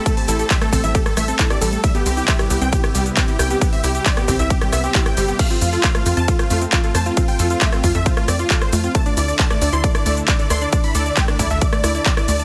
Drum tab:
CC |----------------|----------------|----------------|x---------------|
RD |x---x---x---x---|x---x---x---x---|x---x---x---x---|x---x---x---x---|
HH |xooxxxoxxxoxxxo-|xxo-xxoxxxoxxxox|xooxxxoxxxoxxxox|xxo-xxoxxxoxxxox|
SH |xxxxxxxxxxxxxxxx|xxxxxxxxxxxxxxxx|xxxxxxxxxxxxxxxx|xxxxxxxxxxxxxxxx|
CP |----x-------x---|----x-------x---|----x-------x---|----x-------x---|
SD |-----r---rr--r--|-----r---r----r-|-----r---rr--r--|-----r---r----r-|
BD |o---o-o-o---o---|o---o---o---o---|o---o-o-o---o---|o---o---o---o---|

CC |----------------|----------------|----------------|
RD |x---x---x---x---|x---x---x---x---|x---x---x---x---|
HH |xooxxxo-xxoxxxox|xxo-xxoxxxoxxxox|xooxxxoxxxoxxxox|
SH |xxxxxxxxxxxxxxxx|xxxxxxxxxxxxxxxx|xxxxxxxxxxxxxxxx|
CP |----x-------x---|----x-------x---|----x-------x---|
SD |-----r---rr--r--|-----r---r----r-|-----r---rr--r--|
BD |o---o-o-o---o---|o---o---o---o---|o---o-o-o---o---|